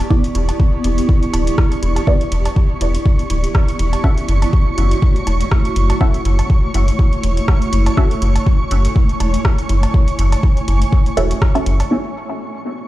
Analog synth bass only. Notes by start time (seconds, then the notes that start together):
0.35 E1
0.84 E1
1.33 D1
1.83 E1
2.32 E1
2.81 E1
3.30 D1
3.79 E1
4.28 F#1
4.78 F#1
5.27 E1
5.76 F#1
6.25 F#1
6.74 F#1
7.24 E1
7.73 F#1
8.22 F#1
8.71 F#1
9.20 E1
9.69 F#1
10.19 F#1
10.68 F#1
11.17 E1
11.66 F#1